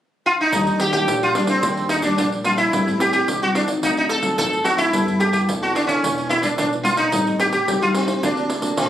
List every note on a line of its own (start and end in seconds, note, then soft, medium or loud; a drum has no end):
0.26 0.31 F4 medium
0.41 0.78 D#4 medium
0.52 0.65 D#2 medium
0.52 1.05 D#3 medium
0.52 0.90 G3 medium
0.52 0.90 A#3 medium
0.52 0.90 D4 medium
0.52 pandeiro medium
0.67 1.02 D#3 loud
0.67 pandeiro soft
0.80 0.91 G4 medium
0.80 pandeiro medium
0.93 1.30 G3 medium
0.93 1.31 A#3 medium
0.93 1.31 D4 medium
0.93 1.22 G4 medium
0.93 pandeiro medium
1.07 1.31 A#1 medium
1.07 1.60 A#2 medium
1.07 pandeiro medium
1.23 1.35 F4 medium
1.23 pandeiro soft
1.35 1.59 G3 medium
1.35 1.59 A#3 medium
1.35 1.41 D4 medium
1.35 1.59 D4 medium
1.35 pandeiro medium
1.47 1.87 C4 medium
1.47 pandeiro medium
1.63 2.10 D#2 medium
1.63 2.16 D#3 medium
1.63 2.00 G3 medium
1.63 2.00 A#3 medium
1.63 2.01 D4 medium
1.63 pandeiro medium
1.77 pandeiro soft
1.89 1.94 D#4 medium
1.89 pandeiro medium
2.02 2.41 G3 medium
2.02 2.41 A#3 medium
2.02 2.17 D4 medium
2.02 2.41 D4 medium
2.02 pandeiro medium
2.18 2.64 A#1 medium
2.18 2.70 A#2 medium
2.18 2.25 D4 medium
2.18 pandeiro medium
2.32 pandeiro soft
2.44 2.68 G3 medium
2.44 2.68 A#3 medium
2.44 2.68 D4 medium
2.44 2.50 F4 medium
2.44 pandeiro medium
2.57 3.01 E4 medium
2.57 pandeiro medium
2.72 2.85 A1 medium
2.72 3.24 A2 medium
2.72 2.80 G3 medium
2.72 2.81 C4 medium
2.72 2.81 E4 medium
2.72 pandeiro medium
2.85 3.22 A2 loud
2.85 2.95 G3 medium
2.85 2.95 C4 medium
2.85 2.96 E4 medium
2.85 pandeiro soft
2.97 3.25 G3 medium
2.97 3.25 C4 medium
2.97 3.25 E4 medium
2.97 3.11 G4 medium
2.97 pandeiro medium
3.13 3.42 G4 loud
3.13 pandeiro medium
3.27 3.52 C2 medium
3.27 3.80 E3 medium
3.27 pandeiro medium
3.42 3.65 G3 medium
3.42 3.65 C4 medium
3.42 3.65 E4 medium
3.42 3.48 F#4 loud
3.42 pandeiro soft
3.55 3.62 D4 medium
3.55 pandeiro medium
3.67 4.19 F#3 medium
3.67 4.19 C4 medium
3.67 4.19 D#4 medium
3.67 pandeiro medium
3.83 4.30 D2 medium
3.83 4.35 D3 medium
3.83 3.89 D#4 medium
3.83 pandeiro medium
3.97 4.03 D#4 medium
3.97 pandeiro soft
4.09 4.37 A4 loud
4.09 pandeiro medium
4.23 4.33 F#3 medium
4.23 4.33 C4 medium
4.23 4.33 D#4 medium
4.23 pandeiro medium
4.38 4.85 D2 medium
4.38 4.90 A2 medium
4.38 4.54 F#3 medium
4.38 4.54 C4 soft
4.38 4.55 D#4 medium
4.38 4.66 A4 medium
4.38 pandeiro medium
4.53 pandeiro soft
4.64 4.90 F#3 medium
4.64 4.90 C4 medium
4.64 4.90 D#4 medium
4.64 4.77 F#4 medium
4.64 pandeiro medium
4.78 5.20 E4 medium
4.78 pandeiro medium
4.93 5.04 G1 medium
4.93 5.45 G3 medium
4.93 5.16 B3 medium
4.93 5.16 E4 medium
4.93 5.16 A4 medium
4.93 pandeiro medium
5.07 5.42 G2 loud
5.07 pandeiro soft
5.19 5.57 B3 medium
5.19 5.57 E4 medium
5.19 5.32 G4 medium
5.19 5.57 A4 medium
5.19 pandeiro medium
5.33 5.40 G4 medium
5.33 pandeiro medium
5.47 5.71 F1 medium
5.47 6.00 D3 medium
5.47 pandeiro medium
5.61 5.98 B3 medium
5.61 5.98 E4 medium
5.61 5.75 F#4 medium
5.61 5.98 A4 medium
5.61 pandeiro soft
5.75 5.87 D4 medium
5.75 pandeiro medium
5.87 6.29 C#4 medium
5.87 pandeiro medium
6.02 6.50 E1 medium
6.02 6.55 E3 medium
6.02 6.28 G#3 medium
6.02 6.29 D4 medium
6.02 6.29 F4 medium
6.02 pandeiro medium
6.18 pandeiro soft
6.29 6.42 E4 medium
6.29 pandeiro medium
6.42 6.80 G#3 medium
6.42 6.47 D4 medium
6.42 6.80 D4 medium
6.42 6.80 F4 medium
6.42 pandeiro medium
6.58 7.04 B1 medium
6.58 7.10 B2 medium
6.58 6.66 D4 medium
6.58 pandeiro medium
6.73 pandeiro soft
6.83 7.02 G#3 medium
6.83 7.03 D4 medium
6.83 6.97 F4 medium
6.83 7.02 F4 medium
6.83 pandeiro medium
6.97 7.36 D#4 medium
6.97 pandeiro medium
7.12 7.24 A1 medium
7.12 7.65 A2 medium
7.12 7.36 G3 medium
7.12 7.36 C4 medium
7.12 7.36 D#4 medium
7.12 pandeiro medium
7.27 7.62 A2 loud
7.27 pandeiro soft
7.39 7.55 G3 medium
7.39 7.56 C4 medium
7.39 7.56 D#4 medium
7.39 7.45 G4 medium
7.39 pandeiro medium
7.52 7.81 G4 medium
7.52 pandeiro medium
7.67 7.91 C#2 medium
7.67 8.19 A2 medium
7.67 7.76 G3 medium
7.67 7.76 C4 medium
7.67 7.76 D#4 medium
7.67 pandeiro medium
7.81 8.18 G3 medium
7.81 8.18 C4 medium
7.81 8.19 D#4 medium
7.81 7.87 F4 medium
7.81 pandeiro soft
7.95 8.23 C4 medium
7.95 pandeiro medium
8.08 pandeiro medium
8.22 8.70 D2 medium
8.22 8.74 D3 medium
8.22 8.48 A#3 medium
8.22 8.48 C4 medium
8.22 8.89 D4 medium
8.22 8.48 F#4 medium
8.22 pandeiro medium
8.37 pandeiro soft
8.50 pandeiro medium
8.61 8.72 A#3 medium
8.61 8.72 C4 medium
8.61 8.72 F#4 medium
8.61 pandeiro medium
8.77 8.89 A#1 medium
8.77 8.89 A2 medium
8.77 8.89 A#3 medium
8.77 8.89 C4 soft
8.77 8.89 C4 medium
8.77 8.89 F#4 medium
8.77 pandeiro medium